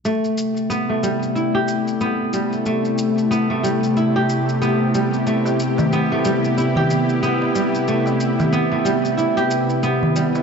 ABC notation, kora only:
X:1
M:4/4
L:1/16
Q:"Swing 16ths" 1/4=92
K:C
V:1 name="Kora"
A, z3 B, A, G,2 E G z2 B,2 G,2 | A, z3 B, A, G,2 E G z2 B,2 G,2 | A, z3 B, A, G,2 E G z2 B,2 G,2 | A, z3 B, A, G,2 E G z2 B,2 G,2 |]